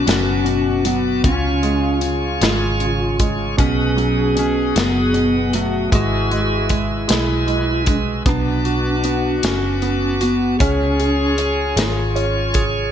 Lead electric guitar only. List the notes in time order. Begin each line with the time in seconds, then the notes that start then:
0.08 C#4
0.87 B3
1.26 C#4
2.44 F4
3.60 C#4
4.39 C#4
4.78 B3
5.55 A3
5.95 F#4
7.13 E4
8.29 D4
9.44 C#4
10.23 B3
10.61 C#4
11.80 F4